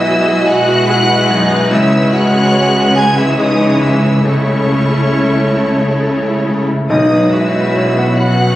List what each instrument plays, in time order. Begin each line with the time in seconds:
Already playing: double bass section B1, grand piano B1 F#2 E4 G#4, cello section B2, french horn section E3 G#3, viola section F#3 F#4, clarinet E4, violin section B4 D#5 E6, flute E5
0.07 grand piano E4
0.27 grand piano G#4
0.46 viola section G#3 F#4, clarinet F#4, violin section B4 F#6, flute F#5, grand piano G#5
0.68 grand piano E4
0.89 viola section E4, grand piano G#4
1.10 grand piano E4
1.30 grand piano F#2, viola section D#4
1.51 grand piano E4
1.70 double bass section C#2, grand piano C#2, cello section C#3, viola section G#3 C#4, clarinet E4, violin section C#5 E6, flute E5
1.92 grand piano G#2
2.12 grand piano E4, clarinet F#4, flute F#5, violin section F#6
2.34 grand piano G#4
2.55 grand piano C#5
2.75 grand piano E5
2.95 viola section E3, clarinet G#4, violin section C#5 G#6, flute G#5, grand piano G#5
3.17 clarinet E4, grand piano E5, flute E5, violin section E6
3.38 clarinet D#4, grand piano G#4, flute D#5, violin section D#6
3.60 grand piano E4
3.81 grand piano G#2, clarinet E4, flute E5, violin section E6
4.03 grand piano E4
4.24 grand piano C#2, french horn section A3 E4, viola section A3 E4, clarinet C#4, violin section A4 C#5 C#6, flute C#5
4.47 grand piano C#3
4.69 grand piano E4
4.91 grand piano A4
5.11 grand piano C#5
5.33 grand piano E5
5.56 grand piano A5
5.78 grand piano E5
6.01 grand piano A4
6.24 grand piano E4
6.46 grand piano C#3
6.69 grand piano E4
6.89 grand piano B1, double bass section B1, cello section B2, timpani B2, viola section G#3 F#4, french horn section B3 C#4, clarinet D#4, violin section B4 D#6, flute D#5
7.13 grand piano F#2
7.33 clarinet E4, grand piano F#4, flute E5, violin section E6
7.55 grand piano B4
7.77 grand piano C#5
7.98 grand piano F#5
8.17 viola section F#3 F#4, clarinet F#4, flute F#5, violin section F#5 F#6, grand piano B5
8.41 grand piano F#5